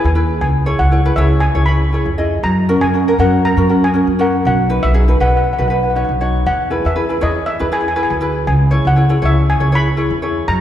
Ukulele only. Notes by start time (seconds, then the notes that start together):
0.15 E4 G#4 B4
0.66 E4 G#4 C#5
0.91 E4 G#4 C#5
1.05 E4 G#4 B4
1.17 E4 G#4 C#5
1.55 E4 G#4 C#5
1.68 E4 G#4 C#5
1.92 E4 G#4 C#5
2.18 E4 G#4 D#5
2.69 C#4 F#4 A#4
2.94 C#4 F#4 A#4
3.08 C#4 F#4 A#4
3.19 C#4 F#4 A#4
3.57 C#4 F#4 A#4
3.69 C#4 F#4 A#4
3.94 C#4 F#4 A#4
4.19 C#4 F#4 A#4
4.69 D#4 F#4 B4
4.94 D#4 F#4 G#4
5.08 D#4 F#4 B4
5.20 D#4 F#4 B4
5.58 D#4 F#4 B4
5.70 D#4 F#4 B4
5.95 D#4 F#4 C#5
6.21 D#4 F#4 C#5
6.70 E4 G#4 B4
6.96 E4 G#4 B4
7.09 E4 G#4 B4
7.21 E4 G#4 C#5
7.59 E4 G#4 B4
7.72 E4 G#4 B4
7.96 E4 G#4 B4
8.21 E4 G#4 B4
8.71 E4 G#4 C#5
8.96 E4 G#4 C#5
9.09 E4 G#4 C#5
9.22 E4 G#4 C#5
9.60 E4 G#4 C#5
9.72 E4 G#4 C#5
9.97 E4 G#4 C#5
10.22 E4 G#4 C#5